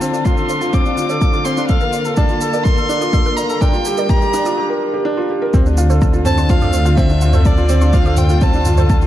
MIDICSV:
0, 0, Header, 1, 7, 480
1, 0, Start_track
1, 0, Key_signature, -1, "minor"
1, 0, Tempo, 480000
1, 1695, Time_signature, 4, 2, 24, 8
1, 9068, End_track
2, 0, Start_track
2, 0, Title_t, "Violin"
2, 0, Program_c, 0, 40
2, 0, Note_on_c, 0, 81, 92
2, 246, Note_on_c, 0, 84, 105
2, 262, Note_off_c, 0, 81, 0
2, 727, Note_on_c, 0, 86, 103
2, 742, Note_off_c, 0, 84, 0
2, 1447, Note_on_c, 0, 84, 94
2, 1462, Note_off_c, 0, 86, 0
2, 1673, Note_off_c, 0, 84, 0
2, 1679, Note_on_c, 0, 77, 99
2, 2133, Note_off_c, 0, 77, 0
2, 2160, Note_on_c, 0, 81, 102
2, 2641, Note_on_c, 0, 84, 106
2, 2656, Note_off_c, 0, 81, 0
2, 3365, Note_on_c, 0, 82, 90
2, 3380, Note_off_c, 0, 84, 0
2, 3614, Note_on_c, 0, 79, 97
2, 3629, Note_off_c, 0, 82, 0
2, 4093, Note_on_c, 0, 82, 97
2, 4108, Note_off_c, 0, 79, 0
2, 4574, Note_off_c, 0, 82, 0
2, 6255, Note_on_c, 0, 81, 106
2, 6496, Note_on_c, 0, 77, 109
2, 6512, Note_off_c, 0, 81, 0
2, 6978, Note_on_c, 0, 76, 95
2, 6993, Note_off_c, 0, 77, 0
2, 7464, Note_on_c, 0, 74, 90
2, 7479, Note_off_c, 0, 76, 0
2, 7939, Note_on_c, 0, 77, 94
2, 7954, Note_off_c, 0, 74, 0
2, 8178, Note_on_c, 0, 79, 91
2, 8193, Note_off_c, 0, 77, 0
2, 8430, Note_on_c, 0, 81, 92
2, 8445, Note_off_c, 0, 79, 0
2, 8902, Note_off_c, 0, 81, 0
2, 9068, End_track
3, 0, Start_track
3, 0, Title_t, "Synth arpeggio sound"
3, 0, Program_c, 1, 84
3, 16, Note_on_c, 1, 72, 70
3, 59, Note_off_c, 1, 72, 0
3, 139, Note_on_c, 1, 84, 73
3, 180, Note_off_c, 1, 84, 0
3, 259, Note_on_c, 1, 72, 89
3, 300, Note_off_c, 1, 72, 0
3, 372, Note_on_c, 1, 86, 64
3, 438, Note_off_c, 1, 86, 0
3, 496, Note_on_c, 1, 72, 81
3, 521, Note_off_c, 1, 72, 0
3, 614, Note_on_c, 1, 77, 75
3, 658, Note_off_c, 1, 77, 0
3, 737, Note_on_c, 1, 72, 73
3, 762, Note_off_c, 1, 72, 0
3, 975, Note_on_c, 1, 77, 73
3, 1001, Note_off_c, 1, 77, 0
3, 1095, Note_on_c, 1, 72, 107
3, 1121, Note_off_c, 1, 72, 0
3, 1213, Note_on_c, 1, 81, 98
3, 1240, Note_off_c, 1, 81, 0
3, 1458, Note_on_c, 1, 72, 75
3, 1500, Note_off_c, 1, 72, 0
3, 1574, Note_on_c, 1, 84, 71
3, 1617, Note_off_c, 1, 84, 0
3, 1696, Note_on_c, 1, 74, 78
3, 1738, Note_off_c, 1, 74, 0
3, 1814, Note_on_c, 1, 89, 70
3, 1879, Note_off_c, 1, 89, 0
3, 1933, Note_on_c, 1, 74, 69
3, 1960, Note_off_c, 1, 74, 0
3, 2051, Note_on_c, 1, 81, 74
3, 2096, Note_off_c, 1, 81, 0
3, 2173, Note_on_c, 1, 74, 89
3, 2200, Note_off_c, 1, 74, 0
3, 2412, Note_on_c, 1, 81, 84
3, 2440, Note_off_c, 1, 81, 0
3, 2532, Note_on_c, 1, 74, 102
3, 2559, Note_off_c, 1, 74, 0
3, 2655, Note_on_c, 1, 82, 96
3, 2681, Note_off_c, 1, 82, 0
3, 2895, Note_on_c, 1, 74, 79
3, 2938, Note_off_c, 1, 74, 0
3, 3018, Note_on_c, 1, 86, 75
3, 3059, Note_off_c, 1, 86, 0
3, 3141, Note_on_c, 1, 74, 78
3, 3181, Note_off_c, 1, 74, 0
3, 3261, Note_on_c, 1, 89, 73
3, 3322, Note_off_c, 1, 89, 0
3, 3380, Note_on_c, 1, 74, 76
3, 3403, Note_off_c, 1, 74, 0
3, 3503, Note_on_c, 1, 81, 71
3, 3542, Note_off_c, 1, 81, 0
3, 3623, Note_on_c, 1, 74, 81
3, 3645, Note_off_c, 1, 74, 0
3, 3861, Note_on_c, 1, 79, 70
3, 3884, Note_off_c, 1, 79, 0
3, 3984, Note_on_c, 1, 74, 98
3, 4005, Note_off_c, 1, 74, 0
3, 4103, Note_on_c, 1, 82, 110
3, 4125, Note_off_c, 1, 82, 0
3, 4340, Note_on_c, 1, 74, 81
3, 4381, Note_off_c, 1, 74, 0
3, 4460, Note_on_c, 1, 86, 75
3, 4500, Note_off_c, 1, 86, 0
3, 5539, Note_on_c, 1, 72, 78
3, 5563, Note_off_c, 1, 72, 0
3, 5778, Note_on_c, 1, 77, 73
3, 5802, Note_off_c, 1, 77, 0
3, 5898, Note_on_c, 1, 72, 96
3, 5922, Note_off_c, 1, 72, 0
3, 6017, Note_on_c, 1, 81, 113
3, 6042, Note_off_c, 1, 81, 0
3, 6259, Note_on_c, 1, 72, 80
3, 6300, Note_off_c, 1, 72, 0
3, 6378, Note_on_c, 1, 84, 72
3, 6419, Note_off_c, 1, 84, 0
3, 6496, Note_on_c, 1, 72, 81
3, 6538, Note_off_c, 1, 72, 0
3, 6618, Note_on_c, 1, 86, 76
3, 6681, Note_off_c, 1, 86, 0
3, 6735, Note_on_c, 1, 72, 77
3, 6761, Note_off_c, 1, 72, 0
3, 6854, Note_on_c, 1, 77, 84
3, 6898, Note_off_c, 1, 77, 0
3, 6972, Note_on_c, 1, 72, 79
3, 7000, Note_off_c, 1, 72, 0
3, 7217, Note_on_c, 1, 77, 80
3, 7242, Note_off_c, 1, 77, 0
3, 7333, Note_on_c, 1, 72, 97
3, 7360, Note_off_c, 1, 72, 0
3, 7457, Note_on_c, 1, 81, 94
3, 7482, Note_off_c, 1, 81, 0
3, 7695, Note_on_c, 1, 72, 78
3, 7738, Note_off_c, 1, 72, 0
3, 7814, Note_on_c, 1, 84, 78
3, 7857, Note_off_c, 1, 84, 0
3, 7933, Note_on_c, 1, 72, 92
3, 7977, Note_off_c, 1, 72, 0
3, 8057, Note_on_c, 1, 86, 72
3, 8120, Note_off_c, 1, 86, 0
3, 8178, Note_on_c, 1, 72, 77
3, 8202, Note_off_c, 1, 72, 0
3, 8298, Note_on_c, 1, 77, 77
3, 8339, Note_off_c, 1, 77, 0
3, 8420, Note_on_c, 1, 72, 80
3, 8443, Note_off_c, 1, 72, 0
3, 8662, Note_on_c, 1, 77, 80
3, 8684, Note_off_c, 1, 77, 0
3, 8777, Note_on_c, 1, 72, 102
3, 8802, Note_off_c, 1, 72, 0
3, 8898, Note_on_c, 1, 81, 101
3, 8922, Note_off_c, 1, 81, 0
3, 9068, End_track
4, 0, Start_track
4, 0, Title_t, "Felt piano"
4, 0, Program_c, 2, 0
4, 0, Control_c, 2, 64, 127
4, 0, Note_on_c, 2, 60, 84
4, 0, Note_on_c, 2, 62, 68
4, 0, Note_on_c, 2, 65, 68
4, 0, Note_on_c, 2, 69, 69
4, 12, Note_off_c, 2, 60, 0
4, 12, Note_on_c, 2, 60, 98
4, 127, Note_off_c, 2, 60, 0
4, 127, Note_off_c, 2, 62, 0
4, 127, Note_on_c, 2, 62, 62
4, 199, Note_off_c, 2, 62, 0
4, 251, Note_off_c, 2, 65, 0
4, 251, Note_on_c, 2, 65, 71
4, 367, Note_off_c, 2, 65, 0
4, 372, Note_off_c, 2, 69, 0
4, 372, Note_on_c, 2, 69, 71
4, 488, Note_off_c, 2, 69, 0
4, 609, Note_on_c, 2, 65, 66
4, 726, Note_off_c, 2, 65, 0
4, 727, Note_on_c, 2, 60, 91
4, 845, Note_off_c, 2, 60, 0
4, 852, Note_on_c, 2, 62, 69
4, 922, Note_off_c, 2, 62, 0
4, 971, Note_on_c, 2, 65, 68
4, 1087, Note_off_c, 2, 65, 0
4, 1097, Note_on_c, 2, 69, 71
4, 1210, Note_off_c, 2, 69, 0
4, 1331, Note_on_c, 2, 65, 70
4, 1447, Note_off_c, 2, 65, 0
4, 1452, Note_on_c, 2, 60, 95
4, 1567, Note_off_c, 2, 60, 0
4, 1574, Note_on_c, 2, 62, 73
4, 1643, Note_off_c, 2, 62, 0
4, 1690, Note_on_c, 2, 69, 76
4, 1709, Control_c, 2, 64, 0
4, 1807, Note_off_c, 2, 69, 0
4, 1808, Note_on_c, 2, 70, 69
4, 1862, Control_c, 2, 64, 127
4, 1926, Note_off_c, 2, 70, 0
4, 2052, Note_on_c, 2, 69, 69
4, 2168, Note_off_c, 2, 69, 0
4, 2173, Note_on_c, 2, 62, 100
4, 2288, Note_off_c, 2, 62, 0
4, 2297, Note_on_c, 2, 65, 71
4, 2364, Note_off_c, 2, 65, 0
4, 2414, Note_on_c, 2, 69, 80
4, 2528, Note_off_c, 2, 69, 0
4, 2539, Note_on_c, 2, 70, 72
4, 2651, Note_off_c, 2, 70, 0
4, 2775, Note_on_c, 2, 69, 72
4, 2889, Note_off_c, 2, 69, 0
4, 2890, Note_on_c, 2, 62, 97
4, 3007, Note_off_c, 2, 62, 0
4, 3010, Note_on_c, 2, 65, 75
4, 3081, Note_off_c, 2, 65, 0
4, 3129, Note_on_c, 2, 69, 81
4, 3246, Note_off_c, 2, 69, 0
4, 3252, Note_on_c, 2, 70, 73
4, 3368, Note_off_c, 2, 70, 0
4, 3490, Note_on_c, 2, 69, 77
4, 3606, Note_off_c, 2, 69, 0
4, 3611, Note_on_c, 2, 62, 100
4, 3628, Control_c, 2, 64, 0
4, 3727, Note_off_c, 2, 62, 0
4, 3730, Note_on_c, 2, 65, 70
4, 3801, Note_off_c, 2, 65, 0
4, 3817, Control_c, 2, 64, 127
4, 3855, Note_on_c, 2, 67, 76
4, 3969, Note_off_c, 2, 67, 0
4, 3974, Note_on_c, 2, 70, 70
4, 4089, Note_off_c, 2, 70, 0
4, 4218, Note_on_c, 2, 67, 76
4, 4330, Note_off_c, 2, 67, 0
4, 4336, Note_on_c, 2, 62, 101
4, 4449, Note_off_c, 2, 62, 0
4, 4452, Note_on_c, 2, 65, 73
4, 4522, Note_off_c, 2, 65, 0
4, 4571, Note_on_c, 2, 67, 82
4, 4687, Note_off_c, 2, 67, 0
4, 4694, Note_on_c, 2, 70, 78
4, 4809, Note_off_c, 2, 70, 0
4, 4935, Note_on_c, 2, 67, 81
4, 5049, Note_off_c, 2, 67, 0
4, 5050, Note_on_c, 2, 62, 102
4, 5166, Note_off_c, 2, 62, 0
4, 5173, Note_on_c, 2, 65, 78
4, 5242, Note_off_c, 2, 65, 0
4, 5298, Note_on_c, 2, 67, 74
4, 5410, Note_off_c, 2, 67, 0
4, 5418, Note_on_c, 2, 70, 77
4, 5531, Note_off_c, 2, 70, 0
4, 5538, Note_on_c, 2, 60, 102
4, 5548, Control_c, 2, 64, 0
4, 5650, Note_off_c, 2, 60, 0
4, 5657, Note_on_c, 2, 62, 76
4, 5718, Control_c, 2, 64, 127
4, 5725, Note_off_c, 2, 62, 0
4, 5774, Note_on_c, 2, 65, 82
4, 5889, Note_off_c, 2, 65, 0
4, 5894, Note_on_c, 2, 69, 71
4, 6009, Note_off_c, 2, 69, 0
4, 6133, Note_on_c, 2, 65, 74
4, 6248, Note_off_c, 2, 65, 0
4, 6250, Note_on_c, 2, 60, 101
4, 6366, Note_off_c, 2, 60, 0
4, 6371, Note_on_c, 2, 62, 75
4, 6441, Note_off_c, 2, 62, 0
4, 6494, Note_on_c, 2, 65, 74
4, 6609, Note_off_c, 2, 65, 0
4, 6618, Note_on_c, 2, 69, 72
4, 6730, Note_off_c, 2, 69, 0
4, 6852, Note_on_c, 2, 65, 78
4, 6968, Note_off_c, 2, 65, 0
4, 6978, Note_on_c, 2, 60, 107
4, 7091, Note_off_c, 2, 60, 0
4, 7102, Note_on_c, 2, 62, 73
4, 7167, Note_off_c, 2, 62, 0
4, 7221, Note_on_c, 2, 65, 81
4, 7332, Note_off_c, 2, 65, 0
4, 7340, Note_on_c, 2, 69, 81
4, 7451, Note_off_c, 2, 69, 0
4, 7578, Note_on_c, 2, 65, 74
4, 7691, Note_off_c, 2, 65, 0
4, 7694, Note_on_c, 2, 60, 109
4, 7809, Note_off_c, 2, 60, 0
4, 7816, Note_on_c, 2, 62, 71
4, 7884, Note_off_c, 2, 62, 0
4, 7937, Note_on_c, 2, 65, 82
4, 8050, Note_off_c, 2, 65, 0
4, 8058, Note_on_c, 2, 69, 79
4, 8171, Note_off_c, 2, 69, 0
4, 8302, Note_on_c, 2, 65, 75
4, 8412, Note_off_c, 2, 65, 0
4, 8421, Note_on_c, 2, 60, 95
4, 8532, Note_off_c, 2, 60, 0
4, 8542, Note_on_c, 2, 62, 79
4, 8607, Note_off_c, 2, 62, 0
4, 8660, Note_on_c, 2, 65, 78
4, 8772, Note_off_c, 2, 65, 0
4, 8785, Note_on_c, 2, 69, 80
4, 8894, Note_off_c, 2, 69, 0
4, 9024, Note_on_c, 2, 65, 75
4, 9068, Note_off_c, 2, 65, 0
4, 9068, End_track
5, 0, Start_track
5, 0, Title_t, "String section"
5, 0, Program_c, 3, 48
5, 0, Note_on_c, 3, 50, 67
5, 0, Note_on_c, 3, 62, 64
5, 0, Note_on_c, 3, 65, 75
5, 1674, Note_off_c, 3, 62, 0
5, 1693, Note_on_c, 3, 58, 70
5, 3600, Note_on_c, 3, 55, 72
5, 4533, Note_off_c, 3, 50, 0
5, 4533, Note_off_c, 3, 65, 0
5, 4545, Note_off_c, 3, 58, 0
5, 4558, Note_off_c, 3, 55, 0
5, 5530, Note_on_c, 3, 65, 90
5, 5535, Note_on_c, 3, 60, 71
5, 5537, Note_on_c, 3, 50, 77
5, 9068, Note_off_c, 3, 50, 0
5, 9068, Note_off_c, 3, 60, 0
5, 9068, Note_off_c, 3, 65, 0
5, 9068, End_track
6, 0, Start_track
6, 0, Title_t, "Detuned saw bass"
6, 0, Program_c, 4, 39
6, 0, Note_on_c, 4, 38, 84
6, 1669, Note_off_c, 4, 38, 0
6, 1692, Note_on_c, 4, 34, 85
6, 3590, Note_off_c, 4, 34, 0
6, 3612, Note_on_c, 4, 34, 86
6, 4574, Note_off_c, 4, 34, 0
6, 5537, Note_on_c, 4, 38, 92
6, 9068, Note_off_c, 4, 38, 0
6, 9068, End_track
7, 0, Start_track
7, 0, Title_t, "Drums"
7, 15, Note_on_c, 9, 82, 74
7, 115, Note_off_c, 9, 82, 0
7, 138, Note_on_c, 9, 82, 30
7, 238, Note_off_c, 9, 82, 0
7, 254, Note_on_c, 9, 82, 41
7, 255, Note_on_c, 9, 36, 91
7, 354, Note_off_c, 9, 82, 0
7, 355, Note_off_c, 9, 36, 0
7, 371, Note_on_c, 9, 82, 19
7, 471, Note_off_c, 9, 82, 0
7, 491, Note_on_c, 9, 82, 71
7, 590, Note_off_c, 9, 82, 0
7, 612, Note_on_c, 9, 82, 30
7, 712, Note_off_c, 9, 82, 0
7, 734, Note_on_c, 9, 82, 42
7, 735, Note_on_c, 9, 36, 93
7, 834, Note_off_c, 9, 82, 0
7, 835, Note_off_c, 9, 36, 0
7, 854, Note_on_c, 9, 82, 20
7, 954, Note_off_c, 9, 82, 0
7, 974, Note_on_c, 9, 82, 69
7, 1074, Note_off_c, 9, 82, 0
7, 1094, Note_on_c, 9, 82, 32
7, 1194, Note_off_c, 9, 82, 0
7, 1214, Note_on_c, 9, 82, 42
7, 1215, Note_on_c, 9, 36, 102
7, 1314, Note_off_c, 9, 82, 0
7, 1315, Note_off_c, 9, 36, 0
7, 1332, Note_on_c, 9, 82, 21
7, 1432, Note_off_c, 9, 82, 0
7, 1451, Note_on_c, 9, 82, 67
7, 1551, Note_off_c, 9, 82, 0
7, 1571, Note_on_c, 9, 82, 33
7, 1671, Note_off_c, 9, 82, 0
7, 1688, Note_on_c, 9, 82, 38
7, 1694, Note_on_c, 9, 36, 103
7, 1788, Note_off_c, 9, 82, 0
7, 1794, Note_off_c, 9, 36, 0
7, 1804, Note_on_c, 9, 82, 20
7, 1904, Note_off_c, 9, 82, 0
7, 1929, Note_on_c, 9, 82, 69
7, 2029, Note_off_c, 9, 82, 0
7, 2048, Note_on_c, 9, 82, 33
7, 2148, Note_off_c, 9, 82, 0
7, 2165, Note_on_c, 9, 82, 39
7, 2174, Note_on_c, 9, 36, 101
7, 2265, Note_off_c, 9, 82, 0
7, 2274, Note_off_c, 9, 36, 0
7, 2288, Note_on_c, 9, 82, 22
7, 2388, Note_off_c, 9, 82, 0
7, 2410, Note_on_c, 9, 82, 77
7, 2510, Note_off_c, 9, 82, 0
7, 2533, Note_on_c, 9, 82, 31
7, 2633, Note_off_c, 9, 82, 0
7, 2652, Note_on_c, 9, 82, 42
7, 2654, Note_on_c, 9, 36, 110
7, 2752, Note_off_c, 9, 82, 0
7, 2754, Note_off_c, 9, 36, 0
7, 2774, Note_on_c, 9, 82, 20
7, 2874, Note_off_c, 9, 82, 0
7, 2893, Note_on_c, 9, 82, 68
7, 2993, Note_off_c, 9, 82, 0
7, 3013, Note_on_c, 9, 82, 31
7, 3113, Note_off_c, 9, 82, 0
7, 3133, Note_on_c, 9, 36, 113
7, 3133, Note_on_c, 9, 82, 40
7, 3233, Note_off_c, 9, 36, 0
7, 3233, Note_off_c, 9, 82, 0
7, 3255, Note_on_c, 9, 82, 19
7, 3355, Note_off_c, 9, 82, 0
7, 3374, Note_on_c, 9, 82, 72
7, 3474, Note_off_c, 9, 82, 0
7, 3496, Note_on_c, 9, 82, 31
7, 3596, Note_off_c, 9, 82, 0
7, 3613, Note_on_c, 9, 36, 104
7, 3614, Note_on_c, 9, 82, 41
7, 3713, Note_off_c, 9, 36, 0
7, 3714, Note_off_c, 9, 82, 0
7, 3732, Note_on_c, 9, 82, 19
7, 3832, Note_off_c, 9, 82, 0
7, 3850, Note_on_c, 9, 82, 81
7, 3950, Note_off_c, 9, 82, 0
7, 3972, Note_on_c, 9, 82, 34
7, 4072, Note_off_c, 9, 82, 0
7, 4092, Note_on_c, 9, 82, 44
7, 4093, Note_on_c, 9, 36, 113
7, 4192, Note_off_c, 9, 82, 0
7, 4193, Note_off_c, 9, 36, 0
7, 4216, Note_on_c, 9, 82, 20
7, 4315, Note_off_c, 9, 82, 0
7, 4334, Note_on_c, 9, 82, 75
7, 4434, Note_off_c, 9, 82, 0
7, 4455, Note_on_c, 9, 82, 36
7, 4555, Note_off_c, 9, 82, 0
7, 5537, Note_on_c, 9, 36, 107
7, 5537, Note_on_c, 9, 82, 40
7, 5637, Note_off_c, 9, 36, 0
7, 5637, Note_off_c, 9, 82, 0
7, 5660, Note_on_c, 9, 82, 21
7, 5760, Note_off_c, 9, 82, 0
7, 5774, Note_on_c, 9, 82, 73
7, 5874, Note_off_c, 9, 82, 0
7, 5899, Note_on_c, 9, 82, 32
7, 5999, Note_off_c, 9, 82, 0
7, 6016, Note_on_c, 9, 82, 45
7, 6017, Note_on_c, 9, 36, 102
7, 6116, Note_off_c, 9, 82, 0
7, 6117, Note_off_c, 9, 36, 0
7, 6135, Note_on_c, 9, 82, 22
7, 6235, Note_off_c, 9, 82, 0
7, 6255, Note_on_c, 9, 45, 72
7, 6255, Note_on_c, 9, 82, 75
7, 6355, Note_off_c, 9, 45, 0
7, 6355, Note_off_c, 9, 82, 0
7, 6375, Note_on_c, 9, 82, 33
7, 6475, Note_off_c, 9, 82, 0
7, 6494, Note_on_c, 9, 82, 42
7, 6496, Note_on_c, 9, 36, 103
7, 6594, Note_off_c, 9, 82, 0
7, 6596, Note_off_c, 9, 36, 0
7, 6614, Note_on_c, 9, 45, 66
7, 6614, Note_on_c, 9, 82, 20
7, 6714, Note_off_c, 9, 45, 0
7, 6714, Note_off_c, 9, 82, 0
7, 6730, Note_on_c, 9, 82, 76
7, 6830, Note_off_c, 9, 82, 0
7, 6855, Note_on_c, 9, 82, 32
7, 6955, Note_off_c, 9, 82, 0
7, 6975, Note_on_c, 9, 36, 104
7, 6975, Note_on_c, 9, 82, 41
7, 7075, Note_off_c, 9, 36, 0
7, 7075, Note_off_c, 9, 82, 0
7, 7092, Note_on_c, 9, 82, 20
7, 7192, Note_off_c, 9, 82, 0
7, 7211, Note_on_c, 9, 82, 73
7, 7311, Note_off_c, 9, 82, 0
7, 7331, Note_on_c, 9, 45, 72
7, 7331, Note_on_c, 9, 82, 33
7, 7431, Note_off_c, 9, 45, 0
7, 7431, Note_off_c, 9, 82, 0
7, 7452, Note_on_c, 9, 82, 45
7, 7456, Note_on_c, 9, 36, 112
7, 7552, Note_off_c, 9, 82, 0
7, 7556, Note_off_c, 9, 36, 0
7, 7572, Note_on_c, 9, 82, 19
7, 7672, Note_off_c, 9, 82, 0
7, 7690, Note_on_c, 9, 82, 75
7, 7790, Note_off_c, 9, 82, 0
7, 7812, Note_on_c, 9, 82, 34
7, 7912, Note_off_c, 9, 82, 0
7, 7931, Note_on_c, 9, 82, 44
7, 7935, Note_on_c, 9, 36, 107
7, 8031, Note_off_c, 9, 82, 0
7, 8035, Note_off_c, 9, 36, 0
7, 8054, Note_on_c, 9, 82, 20
7, 8153, Note_off_c, 9, 82, 0
7, 8168, Note_on_c, 9, 45, 70
7, 8168, Note_on_c, 9, 82, 72
7, 8268, Note_off_c, 9, 45, 0
7, 8268, Note_off_c, 9, 82, 0
7, 8292, Note_on_c, 9, 82, 34
7, 8392, Note_off_c, 9, 82, 0
7, 8412, Note_on_c, 9, 82, 42
7, 8416, Note_on_c, 9, 36, 100
7, 8512, Note_off_c, 9, 82, 0
7, 8516, Note_off_c, 9, 36, 0
7, 8533, Note_on_c, 9, 82, 22
7, 8633, Note_off_c, 9, 82, 0
7, 8651, Note_on_c, 9, 45, 69
7, 8651, Note_on_c, 9, 82, 76
7, 8751, Note_off_c, 9, 45, 0
7, 8751, Note_off_c, 9, 82, 0
7, 8774, Note_on_c, 9, 45, 65
7, 8774, Note_on_c, 9, 82, 32
7, 8874, Note_off_c, 9, 45, 0
7, 8874, Note_off_c, 9, 82, 0
7, 8896, Note_on_c, 9, 36, 116
7, 8896, Note_on_c, 9, 82, 44
7, 8996, Note_off_c, 9, 36, 0
7, 8996, Note_off_c, 9, 82, 0
7, 9014, Note_on_c, 9, 82, 21
7, 9068, Note_off_c, 9, 82, 0
7, 9068, End_track
0, 0, End_of_file